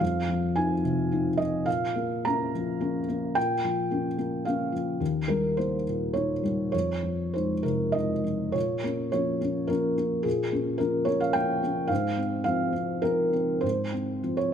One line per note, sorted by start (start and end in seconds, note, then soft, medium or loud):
0.00 1.63 F2 soft
0.00 0.56 F5 medium
0.29 0.73 F3 soft
0.56 0.82 C4 soft
0.56 0.82 D#4 soft
0.56 1.39 G#5 medium
0.84 1.29 C3 soft
1.12 1.36 C4 soft
1.12 1.37 D#4 soft
1.37 1.66 F3 soft
1.37 1.66 D#5 medium
1.66 3.32 A#2 soft
1.66 2.24 F5 medium
1.96 2.25 A#3 soft
2.25 2.51 A#3 soft
2.25 2.52 C#4 soft
2.25 3.36 A#5 medium
2.55 2.98 F3 soft
2.80 3.05 A#3 soft
2.80 3.06 C#4 soft
3.08 3.53 A#3 soft
3.35 4.97 A#2 soft
3.35 4.45 G5 medium
3.64 4.07 F3 soft
3.91 4.15 A#3 soft
3.91 4.15 C#4 soft
4.18 4.46 A#3 soft
4.45 4.71 A#3 soft
4.45 4.71 C#4 soft
4.45 4.73 F5 medium
4.72 5.00 F3 soft
5.00 6.69 D#2 soft
5.28 5.74 G3 soft
5.28 5.56 A#4 medium
5.57 5.83 A#3 soft
5.57 5.83 D#4 soft
5.57 6.14 C5 medium
5.89 6.33 A#2 soft
6.13 6.41 A#3 soft
6.13 6.41 D#4 soft
6.13 6.70 C#5 medium
6.43 6.73 G3 soft
6.72 8.52 F2 soft
6.72 7.34 C#5 medium
7.03 7.52 F3 soft
7.34 7.62 G#3 soft
7.34 7.62 D#4 soft
7.34 7.94 C5 soft
7.63 8.13 C3 soft
7.63 7.94 A#4 medium
7.92 8.22 G#3 soft
7.92 8.22 D#4 soft
7.92 8.54 D#5 medium
8.24 8.55 F3 soft
8.52 8.83 A#2 soft
8.52 9.10 C#5 medium
8.84 9.10 A#3 soft
8.84 9.10 C#4 soft
9.12 9.38 F3 soft
9.12 9.39 A#3 soft
9.12 9.39 C#4 soft
9.12 9.69 C#5 medium
9.41 9.66 A#3 soft
9.41 9.67 C#4 soft
9.67 9.94 F3 soft
9.67 9.95 A#3 soft
9.67 9.95 C#4 soft
9.67 10.24 A#4 medium
9.98 10.23 A#3 soft
9.98 10.23 C#4 soft
10.23 10.52 A#2 soft
10.23 10.79 G#4 medium
10.52 10.77 A#3 soft
10.52 10.77 C#4 soft
10.78 11.05 F3 soft
10.78 11.05 A#3 soft
10.78 11.05 C#4 soft
10.78 11.07 A#4 medium
11.05 11.32 A#3 soft
11.05 11.32 C#4 soft
11.05 11.20 C#5 medium
11.20 11.35 F5 medium
11.33 11.60 F3 soft
11.33 11.60 A#3 soft
11.33 11.60 C#4 soft
11.33 11.89 G5 medium
11.63 11.87 A#3 soft
11.63 11.88 C#4 soft
11.87 12.17 G#2 medium
11.87 12.43 F5 medium
12.17 12.43 C4 soft
12.44 12.71 F3 soft
12.44 12.71 C4 soft
12.44 13.03 F5 medium
12.73 13.00 C4 soft
13.02 13.30 F3 soft
13.02 13.30 C4 soft
13.02 13.63 A#4 medium
13.33 13.60 C4 soft
13.61 13.92 G#2 soft
13.61 14.37 C5 medium
13.92 14.20 C4 soft
14.23 14.51 F3 soft
14.23 14.51 C4 soft
14.37 14.53 C#5 medium